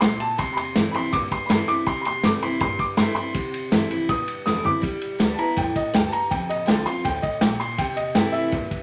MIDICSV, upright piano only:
0, 0, Header, 1, 2, 480
1, 0, Start_track
1, 0, Tempo, 369914
1, 507, Time_signature, 4, 2, 24, 8
1, 11457, End_track
2, 0, Start_track
2, 0, Title_t, "Upright piano"
2, 0, Program_c, 0, 0
2, 8, Note_on_c, 0, 84, 104
2, 250, Note_off_c, 0, 84, 0
2, 263, Note_on_c, 0, 81, 103
2, 498, Note_off_c, 0, 81, 0
2, 503, Note_on_c, 0, 84, 93
2, 686, Note_on_c, 0, 83, 70
2, 721, Note_off_c, 0, 83, 0
2, 721, Note_off_c, 0, 84, 0
2, 740, Note_on_c, 0, 84, 100
2, 977, Note_off_c, 0, 84, 0
2, 1187, Note_on_c, 0, 83, 85
2, 1218, Note_off_c, 0, 83, 0
2, 1240, Note_on_c, 0, 84, 114
2, 1462, Note_on_c, 0, 86, 106
2, 1468, Note_off_c, 0, 84, 0
2, 1698, Note_off_c, 0, 86, 0
2, 1713, Note_on_c, 0, 84, 93
2, 1894, Note_on_c, 0, 83, 76
2, 1928, Note_off_c, 0, 83, 0
2, 1938, Note_off_c, 0, 84, 0
2, 1957, Note_on_c, 0, 84, 97
2, 2180, Note_on_c, 0, 86, 99
2, 2186, Note_off_c, 0, 84, 0
2, 2418, Note_off_c, 0, 86, 0
2, 2424, Note_on_c, 0, 84, 110
2, 2612, Note_on_c, 0, 83, 72
2, 2647, Note_off_c, 0, 83, 0
2, 2660, Note_off_c, 0, 84, 0
2, 2681, Note_on_c, 0, 84, 113
2, 2908, Note_off_c, 0, 84, 0
2, 2918, Note_on_c, 0, 86, 93
2, 3147, Note_off_c, 0, 86, 0
2, 3149, Note_on_c, 0, 84, 97
2, 3371, Note_off_c, 0, 84, 0
2, 3391, Note_on_c, 0, 84, 116
2, 3624, Note_off_c, 0, 84, 0
2, 3629, Note_on_c, 0, 86, 93
2, 3860, Note_on_c, 0, 84, 103
2, 3863, Note_off_c, 0, 86, 0
2, 4067, Note_off_c, 0, 84, 0
2, 4087, Note_on_c, 0, 84, 109
2, 5029, Note_off_c, 0, 84, 0
2, 5309, Note_on_c, 0, 87, 108
2, 5542, Note_off_c, 0, 87, 0
2, 5784, Note_on_c, 0, 87, 90
2, 6019, Note_off_c, 0, 87, 0
2, 6041, Note_on_c, 0, 86, 105
2, 6501, Note_off_c, 0, 86, 0
2, 6932, Note_on_c, 0, 81, 77
2, 6966, Note_off_c, 0, 81, 0
2, 6991, Note_on_c, 0, 82, 105
2, 7223, Note_off_c, 0, 82, 0
2, 7237, Note_on_c, 0, 79, 99
2, 7466, Note_off_c, 0, 79, 0
2, 7475, Note_on_c, 0, 75, 101
2, 7705, Note_off_c, 0, 75, 0
2, 7717, Note_on_c, 0, 79, 101
2, 7889, Note_on_c, 0, 81, 83
2, 7924, Note_off_c, 0, 81, 0
2, 7945, Note_off_c, 0, 79, 0
2, 7946, Note_on_c, 0, 82, 117
2, 8180, Note_off_c, 0, 82, 0
2, 8184, Note_on_c, 0, 79, 98
2, 8419, Note_off_c, 0, 79, 0
2, 8427, Note_on_c, 0, 75, 97
2, 8659, Note_on_c, 0, 79, 88
2, 8660, Note_off_c, 0, 75, 0
2, 8895, Note_off_c, 0, 79, 0
2, 8900, Note_on_c, 0, 84, 101
2, 9136, Note_off_c, 0, 84, 0
2, 9143, Note_on_c, 0, 79, 106
2, 9372, Note_on_c, 0, 75, 97
2, 9377, Note_off_c, 0, 79, 0
2, 9612, Note_off_c, 0, 75, 0
2, 9616, Note_on_c, 0, 79, 99
2, 9854, Note_off_c, 0, 79, 0
2, 9860, Note_on_c, 0, 84, 99
2, 10095, Note_off_c, 0, 84, 0
2, 10099, Note_on_c, 0, 79, 106
2, 10334, Note_on_c, 0, 75, 99
2, 10335, Note_off_c, 0, 79, 0
2, 10572, Note_off_c, 0, 75, 0
2, 10573, Note_on_c, 0, 79, 100
2, 10801, Note_on_c, 0, 76, 120
2, 10811, Note_off_c, 0, 79, 0
2, 11457, Note_off_c, 0, 76, 0
2, 11457, End_track
0, 0, End_of_file